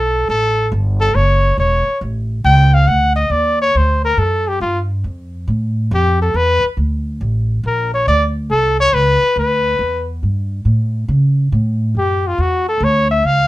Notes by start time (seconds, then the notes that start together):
Already playing: B1 A4
0.29 A1 A4
0.72 G1
1.00 A4
1.15 F#1 C#5
1.58 E1 C#5
1.87 muted upright bass stroke
2.01 A1
2.44 C#2 G5
2.74 F5
2.87 D2 F#5
3.16 D#5
3.30 D#2 D5
3.61 C#5
3.75 D2 C5
4.05 A#4
4.17 F#2 A4
4.48 G4
4.60 G2 F4
5.04 F2
5.47 A2
5.91 F2 G4
6.22 A4
6.34 E2 B4
6.64 muted upright bass stroke
6.77 D2
7.21 A1
7.63 A#1 A#4
7.94 C#5
8.07 D2 D5
8.50 C2 A4
8.80 C#5
8.93 C#2 B4
9.22 muted upright bass stroke
9.36 D2 B4
9.79 E2
10.23 G2
10.65 A2
11.08 C#3
11.52 A2
11.95 F#2 G4
12.27 F4
12.38 E2 F#4
12.69 A4
12.80 D2 C#5
13.11 E5
13.23 C#2 F5